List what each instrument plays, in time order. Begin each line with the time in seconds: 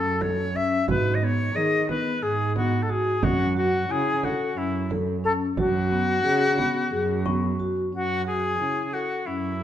Already playing: cello F#2, vibraphone C#4, flute A4, celesta F#5
0.21 vibraphone A4, flute C#5, frame drum
0.54 vibraphone C#4, flute E5, frame drum
0.88 cello G#2, vibraphone F#4, flute B4, frame drum
1.14 flute D#5
1.22 vibraphone B3, flute C#5
1.55 cello D#3, vibraphone G#4, flute D#5
1.89 vibraphone B3, flute B4, frame drum
2.22 cello G#2, flute G#4, vibraphone G#4
2.56 vibraphone B3, flute F#4, frame drum
2.82 flute A4
2.89 vibraphone F#4, flute G#4, frame drum
3.23 cello F#2, vibraphone C#4, flute F#4, frame drum
3.56 vibraphone F#4, flute F#4
3.89 cello C#3, vibraphone E4, flute G#4, celesta G#5
4.23 flute F#4, vibraphone A4, frame drum
4.56 cello F#2, vibraphone C#4, flute E4
4.90 vibraphone A4, frame drum
5.24 vibraphone C#4, flute A4, frame drum
5.57 cello F#2, flute F#4, vibraphone F#4, frame drum
5.91 vibraphone B3, frame drum
6.24 cello C#3, vibraphone G#4
6.58 vibraphone B3, frame drum
6.92 cello F#2, vibraphone G#4
7.25 vibraphone B3, celesta C#6, frame drum
7.59 vibraphone F#4, frame drum
7.93 cello F#2, vibraphone C#4, flute F#4
8.26 vibraphone F#4, flute G#4
8.60 cello C#3, vibraphone E4
8.93 flute F#4, vibraphone A4
9.26 cello F#2, vibraphone C#4, flute E4